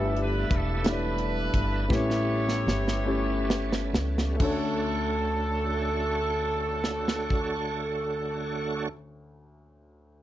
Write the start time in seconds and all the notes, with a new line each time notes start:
Already playing: G1 G2 G3 A3 B3 D4 E4 G4 A4 B4
0.16 closed hi-hat
0.21 B4
0.51 E1 A4, kick, closed hi-hat
0.83 A3 D4 E4 G4 C#5, snare, closed hi-hat
0.88 D4 E4 B4 D5
1.18 closed hi-hat
1.53 G1, kick, closed hi-hat
1.88 A1 A2 G3 A3 B3 C4 E4 G4 A4 B4, kick, snare
1.92 C#4 C#5
1.98 C#4
2.10 snare
2.49 snare
2.67 G1, snare
2.88 snare
3.05 A3 C#4 E4 G4 C#5
3.50 snare
3.72 snare
3.93 C#2, snare
4.18 snare
4.36 D2 A3 C#4 F#4 C#5, kick, crash
4.40 D2 D3 D4 F#4 A4 C#5
6.84 snare
7.08 snare
7.30 kick